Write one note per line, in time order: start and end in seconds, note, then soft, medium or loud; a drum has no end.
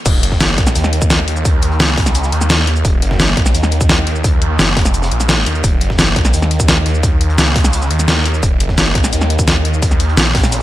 0.05 0.22 D#1 loud
0.05 kick loud
0.05 closed hi-hat medium
0.05 crash medium
0.05 shaker soft
0.23 0.57 F#1 loud
0.23 closed hi-hat loud
0.23 closed hi-hat medium
0.32 kick medium
0.32 snare soft
0.40 snare loud
0.40 closed hi-hat medium
0.40 shaker medium
0.57 0.74 A#1 medium
0.57 kick loud
0.57 closed hi-hat medium
0.57 closed hi-hat loud
0.67 snare medium
0.67 shaker medium
0.75 1.26 D#2 loud
0.75 closed hi-hat medium
0.75 closed hi-hat loud
0.75 shaker soft
0.84 snare medium
0.84 shaker soft
0.93 closed hi-hat loud
0.93 closed hi-hat medium
1.02 kick loud
1.02 shaker medium
1.10 snare loud
1.10 closed hi-hat medium
1.10 shaker soft
1.19 snare soft
1.28 1.79 D#2 loud
1.28 closed hi-hat loud
1.28 closed hi-hat medium
1.36 shaker soft
1.45 kick loud
1.45 closed hi-hat medium
1.45 shaker soft
1.62 closed hi-hat medium
1.71 closed hi-hat soft
1.80 2.31 C#2 medium
1.80 snare loud
1.80 closed hi-hat medium
1.80 shaker soft
1.97 kick loud
1.97 closed hi-hat medium
1.97 open hi-hat medium
2.06 snare soft
2.06 snare medium
2.06 shaker medium
2.15 closed hi-hat medium
2.15 closed hi-hat loud
2.15 shaker soft
2.24 snare soft
2.24 shaker soft
2.32 2.83 D#2 loud
2.32 closed hi-hat medium
2.32 closed hi-hat loud
2.41 snare soft
2.41 shaker medium
2.49 snare loud
2.49 closed hi-hat medium
2.49 shaker soft
2.67 closed hi-hat medium
2.75 closed hi-hat soft
2.75 shaker soft
2.85 3.01 D#1 loud
2.85 kick loud
2.85 closed hi-hat medium
2.85 shaker soft
3.02 3.36 F#1 medium
3.02 closed hi-hat medium
3.11 kick medium
3.11 snare soft
3.20 snare loud
3.20 closed hi-hat medium
3.20 shaker soft
3.37 3.53 A#1 medium
3.37 kick loud
3.37 closed hi-hat medium
3.46 snare soft
3.46 snare medium
3.46 shaker medium
3.55 4.06 D#2 loud
3.55 closed hi-hat medium
3.55 closed hi-hat loud
3.55 shaker soft
3.63 snare medium
3.63 shaker soft
3.71 closed hi-hat medium
3.81 kick loud
3.81 shaker medium
3.89 snare loud
3.89 closed hi-hat medium
3.89 shaker soft
3.98 snare soft
4.07 4.58 D#2 loud
4.07 closed hi-hat medium
4.16 shaker soft
4.24 kick loud
4.24 closed hi-hat medium
4.24 shaker soft
4.42 closed hi-hat medium
4.59 4.75 F#1 loud
4.59 snare loud
4.59 closed hi-hat medium
4.59 shaker soft
4.77 5.10 F1 loud
4.77 kick loud
4.77 snare loud
4.77 closed hi-hat medium
4.77 open hi-hat medium
4.85 snare medium
4.85 shaker medium
4.94 closed hi-hat medium
4.94 shaker soft
5.02 snare loud
5.02 closed hi-hat medium
5.02 shaker soft
5.12 5.45 A#1 loud
5.12 closed hi-hat medium
5.20 snare soft
5.20 closed hi-hat medium
5.20 shaker medium
5.28 snare loud
5.28 closed hi-hat medium
5.28 shaker soft
5.46 5.63 D#2 loud
5.46 closed hi-hat medium
5.55 closed hi-hat soft
5.55 shaker soft
5.64 5.80 D#1 loud
5.64 kick loud
5.64 closed hi-hat medium
5.64 shaker medium
5.81 6.15 F#1 loud
5.81 closed hi-hat medium
5.90 kick medium
5.90 snare soft
5.98 snare loud
5.98 closed hi-hat medium
5.98 shaker medium
6.16 6.32 A#1 loud
6.16 kick loud
6.16 closed hi-hat medium
6.25 snare soft
6.25 snare medium
6.25 shaker medium
6.34 6.85 D#2 loud
6.34 closed hi-hat medium
6.34 shaker soft
6.42 snare medium
6.42 shaker soft
6.51 closed hi-hat medium
6.60 kick loud
6.60 shaker medium
6.68 snare loud
6.68 closed hi-hat medium
6.68 shaker medium
6.77 snare soft
6.86 7.37 D#2 loud
6.86 closed hi-hat medium
6.95 shaker soft
7.03 kick loud
7.03 closed hi-hat medium
7.03 shaker medium
7.21 closed hi-hat medium
7.30 closed hi-hat soft
7.38 7.89 C#2 medium
7.38 snare loud
7.38 closed hi-hat medium
7.38 shaker medium
7.56 kick loud
7.56 closed hi-hat medium
7.56 open hi-hat medium
7.64 snare soft
7.64 snare medium
7.64 shaker medium
7.73 closed hi-hat medium
7.73 shaker medium
7.81 snare soft
7.81 shaker soft
7.90 8.42 D#2 loud
7.90 closed hi-hat medium
7.99 snare soft
7.99 shaker medium
8.08 snare loud
8.08 closed hi-hat medium
8.08 shaker medium
8.26 closed hi-hat medium
8.34 closed hi-hat soft
8.34 shaker soft
8.43 8.59 D#1 loud
8.43 kick loud
8.43 closed hi-hat medium
8.43 closed hi-hat loud
8.43 shaker medium
8.60 8.94 F#1 loud
8.60 closed hi-hat medium
8.60 closed hi-hat loud
8.69 kick medium
8.69 snare medium
8.77 snare loud
8.77 closed hi-hat medium
8.77 shaker medium
8.95 9.11 A#1 loud
8.95 kick loud
8.95 closed hi-hat loud
8.95 closed hi-hat medium
9.04 snare soft
9.04 snare medium
9.04 shaker medium
9.13 9.64 D#2 loud
9.13 closed hi-hat medium
9.13 shaker medium
9.21 snare medium
9.21 shaker soft
9.30 closed hi-hat loud
9.30 closed hi-hat medium
9.39 kick loud
9.39 shaker medium
9.48 snare loud
9.48 closed hi-hat medium
9.48 shaker medium
9.56 snare soft
9.65 10.16 D#2 medium
9.65 closed hi-hat medium
9.65 closed hi-hat loud
9.74 shaker soft
9.82 kick loud
9.82 closed hi-hat medium
9.82 shaker medium
9.91 snare soft
9.91 shaker soft
10.00 closed hi-hat medium
10.00 closed hi-hat loud
10.09 closed hi-hat soft
10.17 10.62 A#1 loud
10.17 snare loud
10.17 closed hi-hat medium
10.17 shaker medium
10.35 kick loud
10.35 snare medium
10.35 closed hi-hat medium
10.35 open hi-hat medium
10.39 snare medium
10.39 closed hi-hat medium
10.43 snare loud
10.43 snare medium
10.43 closed hi-hat medium
10.43 shaker medium
10.52 snare loud
10.52 closed hi-hat medium
10.52 shaker medium